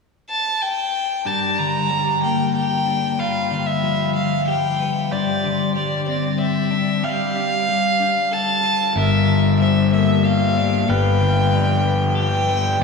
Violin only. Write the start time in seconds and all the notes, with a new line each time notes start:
0.30 A5
0.62 G5
1.26 A5
1.58 A#5
2.23 G5
2.55 G5
3.19 F5
3.66 E5
4.16 F5
4.48 G5
5.11 D5
5.75 D5
6.09 D5
6.41 E5
7.03 F5
8.33 A5
8.98 E5
9.59 E5
9.93 E5
10.25 F5
10.88 G5
12.18 G5